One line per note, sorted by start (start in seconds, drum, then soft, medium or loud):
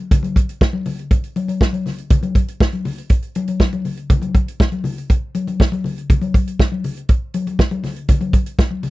0.11 kick loud
0.11 closed hi-hat medium
0.11 muted conga soft
0.11 low conga medium
0.23 closed hi-hat soft
0.23 high conga medium
0.36 kick loud
0.36 closed hi-hat medium
0.36 muted conga soft
0.49 closed hi-hat medium
0.61 kick loud
0.61 snare loud
0.73 high conga medium
0.86 open hi-hat medium
0.86 muted conga soft
0.86 low conga medium
0.99 closed hi-hat soft
1.11 kick loud
1.11 closed hi-hat medium
1.11 muted conga soft
1.24 closed hi-hat soft
1.36 closed hi-hat medium
1.36 muted conga soft
1.36 high conga medium
1.48 closed hi-hat soft
1.48 high conga medium
1.61 kick loud
1.61 snare loud
1.73 closed hi-hat soft
1.73 high conga medium
1.86 snare soft
1.86 open hi-hat medium
1.86 muted conga soft
1.86 low conga medium
1.98 closed hi-hat soft
2.10 kick loud
2.10 closed hi-hat loud
2.10 low conga loud
2.23 closed hi-hat soft
2.23 high conga medium
2.35 kick loud
2.35 closed hi-hat medium
2.35 muted conga soft
2.48 closed hi-hat medium
2.60 kick loud
2.60 snare loud
2.72 closed hi-hat soft
2.72 high conga medium
2.85 open hi-hat medium
2.85 muted conga soft
2.85 low conga medium
2.98 closed hi-hat medium
3.10 kick loud
3.10 closed hi-hat medium
3.22 closed hi-hat soft
3.35 closed hi-hat medium
3.35 muted conga soft
3.35 high conga medium
3.48 closed hi-hat medium
3.48 high conga medium
3.60 kick loud
3.60 snare loud
3.72 closed hi-hat soft
3.72 high conga medium
3.85 open hi-hat medium
3.85 muted conga soft
3.85 low conga medium
3.97 closed hi-hat medium
4.10 kick loud
4.10 closed hi-hat medium
4.10 muted conga soft
4.10 low conga loud
4.22 closed hi-hat soft
4.22 high conga medium
4.35 kick loud
4.35 closed hi-hat medium
4.35 muted conga soft
4.48 closed hi-hat medium
4.60 kick loud
4.60 snare loud
4.60 muted conga soft
4.72 closed hi-hat soft
4.72 high conga medium
4.84 open hi-hat medium
4.84 muted conga soft
4.84 low conga medium
4.98 closed hi-hat medium
5.10 kick loud
5.10 closed hi-hat medium
5.35 closed hi-hat medium
5.35 high conga medium
5.47 closed hi-hat medium
5.47 high conga medium
5.60 kick loud
5.60 snare loud
5.60 muted conga soft
5.72 closed hi-hat soft
5.72 high conga medium
5.84 open hi-hat medium
5.84 muted conga soft
5.84 low conga medium
5.98 closed hi-hat medium
6.10 kick loud
6.10 closed hi-hat medium
6.10 muted conga soft
6.10 low conga medium
6.21 closed hi-hat soft
6.21 high conga medium
6.34 kick loud
6.34 closed hi-hat medium
6.48 closed hi-hat medium
6.59 kick loud
6.59 snare loud
6.59 muted conga soft
6.72 high conga medium
6.84 open hi-hat medium
6.84 muted conga soft
6.84 low conga medium
6.97 closed hi-hat soft
7.09 kick loud
7.09 closed hi-hat medium
7.34 closed hi-hat medium
7.34 high conga medium
7.47 closed hi-hat soft
7.47 high conga medium
7.59 kick loud
7.59 snare loud
7.59 muted conga soft
7.71 closed hi-hat soft
7.71 high conga medium
7.84 snare soft
7.84 open hi-hat medium
7.84 muted conga soft
7.84 low conga medium
7.96 closed hi-hat medium
8.09 kick loud
8.09 closed hi-hat medium
8.09 muted conga soft
8.09 low conga loud
8.21 closed hi-hat soft
8.21 high conga medium
8.33 kick loud
8.33 closed hi-hat medium
8.33 muted conga soft
8.46 closed hi-hat medium
8.59 kick loud
8.59 snare loud
8.59 muted conga soft
8.71 high conga medium
8.83 open hi-hat medium
8.83 muted conga soft
8.83 low conga medium